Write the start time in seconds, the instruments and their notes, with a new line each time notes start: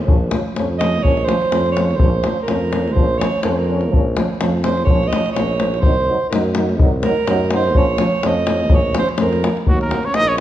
0.06 tuba A#1, euphonium F3, french horn C#4, davul low
0.31 euphonium F3, french horn C#4, davul high
0.55 tuba F2, euphonium F3, french horn C#4, davul high
0.78 euphonium F3, french horn C#4, alto saxophone D#5, davul high
0.96 davul high
1.03 tuba A#1, euphonium F3, french horn C#4, alto saxophone C#5, davul low
1.17 davul high
1.25 euphonium F3, french horn C#4, alto saxophone C5, davul high
1.41 davul high
1.52 tuba F2, euphonium F3, french horn C#4, davul high
1.66 davul high
1.72 alto saxophone C#5
1.77 euphonium F3, french horn C#4, davul high
1.82 alto saxophone C5 C#5
1.91 davul high
1.96 alto saxophone C5, davul low
2.00 tuba A#1, euphonium F3, french horn C#4
2.24 euphonium F3, french horn C#4, davul high
2.42 alto saxophone A#4
2.47 tuba F2, euphonium F3, french horn C#4, davul high
2.72 euphonium F3, french horn C#4, davul high
2.88 davul high
2.93 tuba A#1, euphonium F3, alto saxophone C5, davul low
2.99 french horn C#4
3.18 euphonium F3, alto saxophone C#5, davul high
3.24 french horn C#4
3.42 tuba F2, euphonium F3, alto saxophone A#4, davul high
3.47 french horn C#4
3.52 alto saxophone C5
3.58 alto saxophone A#4
3.67 euphonium F3
3.71 french horn C#4
3.81 davul high
3.90 euphonium F3, davul low
3.94 tuba A#1, french horn C#4
4.16 euphonium F3, french horn C#4, davul high
4.41 tuba F2, euphonium F3, french horn C#4, davul high
4.64 euphonium F3, french horn C#4, alto saxophone C5, davul high
4.77 davul high
4.85 alto saxophone C#5, davul low
4.89 tuba A#1, euphonium F3, french horn C#4
5.03 davul high
5.08 alto saxophone D#5
5.13 euphonium F3, french horn C#4, davul high
5.26 davul high
5.32 euphonium F3, alto saxophone C#5
5.36 tuba A#1, french horn C#4, davul high
5.59 euphonium F3, davul high
5.63 french horn C#4
5.74 davul high
5.81 euphonium F#3, alto saxophone C5, davul low
5.85 tuba C2, french horn D#4
6.08 euphonium F#3, french horn D#4
6.30 tuba F#2, euphonium F#3, french horn D#4, alto saxophone A#4, davul high
6.55 euphonium F#3, french horn D#4, davul high
6.69 davul high
6.79 tuba C2, euphonium F#3, french horn D#4, davul low
7.03 euphonium F#3, french horn D#4, alto saxophone A#4, davul high
7.27 tuba F#2, euphonium F#3, french horn D#4, davul high
7.51 euphonium F#3, french horn D#4, davul high
7.56 alto saxophone C5
7.64 davul high
7.75 tuba A#1, euphonium F3, french horn C#4, alto saxophone C#5, davul low
7.98 euphonium F3, french horn C#4, davul high
8.23 tuba F2, euphonium F3, french horn C#4, alto saxophone D#5, davul high
8.46 euphonium F3, french horn C#4, davul high
8.60 davul high
8.69 tuba A#1, euphonium F3, french horn C#4, davul low
8.75 alto saxophone C#5
8.94 euphonium F3, french horn C#4, davul high
8.99 alto saxophone C5
9.09 davul high
9.17 tuba F2, euphonium F3, french horn C#4, davul high
9.21 alto saxophone A#4
9.33 davul high
9.42 euphonium F3, french horn C#4, davul high
9.57 davul high
9.66 tuba D#2, trumpet F#4, davul low
9.71 alto saxophone F#3
9.81 trumpet A#4, davul high
9.85 alto saxophone A#3
9.89 euphonium F#3, french horn A#3, davul high
10.03 alto saxophone C#4, trumpet C#5, davul high
10.14 tuba A#1, alto saxophone D#4, trumpet D#5, davul high
10.28 alto saxophone C#4, trumpet C#5